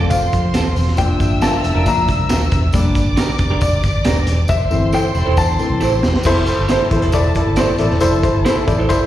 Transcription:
Already playing: grand piano F3 A3 C4
0.00 fingered electric bass F1, clean electric guitar C4 F4
0.10 violin section C5 C6, grand piano F5, kick, closed hi-hat, tambourine
0.33 fingered electric bass F2, kick, closed hi-hat, tambourine
0.54 fingered electric bass D#1, clean electric guitar C4 F4 A4, snare, closed hi-hat, tambourine
0.76 fingered electric bass E1, open hi-hat, tambourine
0.88 snare
0.97 fingered electric bass F1, grand piano F3 A#3 D4 G5, violin section E5 E6, kick, closed hi-hat, tambourine
1.20 fingered electric bass G1, kick, closed hi-hat, tambourine
1.41 clean electric guitar A3 D4 F4 A#4, grand piano A5, snare, closed hi-hat, tambourine
1.64 fingered electric bass F1, clean electric guitar G3 E4, closed hi-hat, tambourine
1.75 fingered electric bass F1, clean electric guitar D4 F4 A#4
1.86 fingered electric bass F2, grand piano F3 A#3 D4 A#5, clean electric guitar F3 D4, kick, closed hi-hat, tambourine
2.08 fingered electric bass C2, kick, closed hi-hat, tambourine
2.29 fingered electric bass D#1, clean electric guitar D4 F4 A#4, snare, closed hi-hat, tambourine
2.52 fingered electric bass E1, kick, snare, closed hi-hat, tambourine
2.73 fingered electric bass F1, grand piano G3 A#3 D4, violin section D5 D6, kick, closed hi-hat, tambourine
2.95 fingered electric bass G1, kick, closed hi-hat, tambourine
3.17 clean electric guitar D4 G4 A#4, snare, closed hi-hat, tambourine
3.29 muted fingered electric bass stroke
3.39 fingered electric bass F1, kick, closed hi-hat, tambourine
3.50 clean electric guitar D4 G4 A#4
3.61 fingered electric bass F1, grand piano D5, kick, closed hi-hat, tambourine
3.83 fingered electric bass G1, kick, closed hi-hat, tambourine
4.04 fingered electric bass D#1, clean electric guitar D4 G4 A#4, snare, closed hi-hat, tambourine
4.27 fingered electric bass E1, snare, closed hi-hat, tambourine
4.48 fingered electric bass F1, violin section C5 C6, grand piano E5, kick, tambourine
4.70 fingered electric bass G1, grand piano E3 A3 C4, tambourine
4.93 clean electric guitar E4 A4 C5, grand piano G5, tambourine
5.14 fingered electric bass E1, clean electric guitar G3 E4, tambourine
5.26 fingered electric bass E1, clean electric guitar E4 A4 C5
5.37 fingered electric bass E2, clean electric guitar D4, grand piano A5, kick, tambourine
5.59 grand piano E3 A3 C4, clean electric guitar E3 C4, muted fingered electric bass stroke, tambourine
5.70 fingered electric bass C2
5.81 fingered electric bass A1, clean electric guitar E4 A4 C5, tambourine
6.03 fingered electric bass E1, snare, tambourine
6.14 snare
6.23 fingered electric bass F1, grand piano E4 A4 C5, violin section A4 A5, kick, crash, tambourine
6.46 grand piano E4 A4 C5, closed hi-hat, tambourine
6.59 fingered electric bass G1
6.68 clean electric guitar E4 A4 C5, grand piano E4 A4 C5, snare, closed hi-hat, tambourine
6.91 fingered electric bass A1, grand piano E4 A4 C5, kick, closed hi-hat, tambourine
7.01 fingered electric bass F1, clean electric guitar E4 A4 C5, closed hi-hat
7.12 fingered electric bass E1, grand piano E4 A4 D5, kick, closed hi-hat, tambourine
7.35 grand piano E4 A4 D5, kick, closed hi-hat, tambourine
7.47 fingered electric bass G1
7.56 clean electric guitar E4 A4 C5, grand piano E4 A4 C5, snare, closed hi-hat, tambourine
7.78 fingered electric bass A1, grand piano E4 A4 D5, snare, closed hi-hat, tambourine
7.91 fingered electric bass E1, snare
8.00 fingered electric bass F1, grand piano E4 A4 C5, closed hi-hat, tambourine
8.23 grand piano E4 A4 C5, kick, closed hi-hat, tambourine
8.35 fingered electric bass G1
8.45 clean electric guitar E4 A4 C5, grand piano E4 A4 C5, snare, closed hi-hat, tambourine
8.57 muted fingered electric bass stroke
8.67 fingered electric bass A1, grand piano E4 A4 D5, kick, closed hi-hat, tambourine
8.78 clean electric guitar E4 A4 C5
8.89 fingered electric bass F1, grand piano E4 A4 C5, violin section C5 C6, kick, closed hi-hat, tambourine

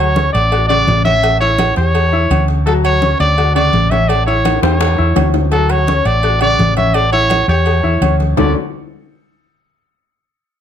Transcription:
Already playing: fingered electric bass D2, grand piano F#3 F#5
0.00 trumpet C#5
0.16 grand piano C#4 C#5 C#6, cowbell, high conga
0.33 fingered electric bass A1, trumpet D5, cowbell, high conga, low agogo
0.52 grand piano F#4 F#5 F#6, cowbell, high conga, low agogo
0.68 grand piano C#3 D5 C#6, trumpet D5, high conga, low agogo
0.88 fingered electric bass A1, cowbell, high conga
1.04 grand piano C#4 C#5 C#6, trumpet E5, cowbell, high conga, low agogo
1.23 cowbell, high conga, low agogo
1.41 grand piano E4 E5 E6, trumpet C#5, high conga, low agogo
1.58 cowbell, high conga, low agogo
1.76 fingered electric bass E2, grand piano G4 G5 G6, trumpet C#5, cowbell, high conga
1.95 cowbell, high conga, low agogo
2.12 grand piano E4 E5 E6, high conga
2.31 fingered electric bass D2, grand piano C#4 C#5 C#6, cowbell, high conga, low agogo
2.48 cowbell
2.66 grand piano F#3 F#4 F#5, trumpet A4, cowbell, high conga, low agogo
2.85 trumpet C#5, high conga, low agogo
3.02 grand piano C#4 C#5 C#6, cowbell, high conga
3.20 fingered electric bass D2, trumpet D5, cowbell, high conga, low agogo
3.38 grand piano F#4 F#5 F#6, cowbell, high conga, low agogo
3.55 grand piano C#3 D5 C#6, trumpet D5, high conga, low agogo
3.73 fingered electric bass A1, cowbell, high conga
3.90 grand piano C#4 C#5 C#6, trumpet E5, cowbell, high conga, low agogo
4.08 trumpet D5, cowbell, high conga, low agogo
4.26 grand piano E4 E5 E6, trumpet C#5, high conga, low agogo
4.45 cowbell, high bongo, high conga, low agogo
4.62 fingered electric bass E2, grand piano G4 G5 G6, trumpet C#5, cowbell, high bongo, high timbale
4.81 cowbell, high bongo, high conga, high timbale, low agogo
4.98 fingered electric bass E2, grand piano E4 E5 E6, high conga
5.16 fingered electric bass D2, grand piano C#4 C#5 C#6, cowbell, low bongo, high conga, low timbale, low agogo
5.34 cowbell, low bongo, low timbale
5.52 grand piano F#3 F#4 F#5, trumpet A4, cowbell, high conga, low agogo
5.70 trumpet C#5, high conga, low agogo
5.87 grand piano C#4 C#5 C#6, cowbell, high conga
6.05 fingered electric bass A1, trumpet D5, cowbell, high conga, low agogo
6.23 grand piano F#4 F#5 F#6, cowbell, high conga, low agogo
6.41 grand piano C#3 D5 C#6, trumpet D5, high conga, low agogo
6.59 fingered electric bass A1, cowbell, high conga
6.77 grand piano C#4 C#5 C#6, trumpet E5, cowbell, high conga, low agogo
6.94 trumpet D5, cowbell, low agogo
7.13 grand piano E4 E5 E6, trumpet C#5, high conga, low agogo
7.30 cowbell, high conga, low agogo
7.48 fingered electric bass E2, grand piano G4 G5 G6, trumpet C#5, cowbell, high conga
7.66 cowbell, high conga, low agogo
7.83 fingered electric bass E2, grand piano E4 E5 E6, high conga
8.01 fingered electric bass D2, grand piano C#4 C#5 C#6, cowbell, high conga, low agogo
8.20 cowbell, high conga
8.37 fingered electric bass D2, grand piano D3 A3 C#4 D4 F#4 A4, trumpet D5, low bongo, low conga, low timbale

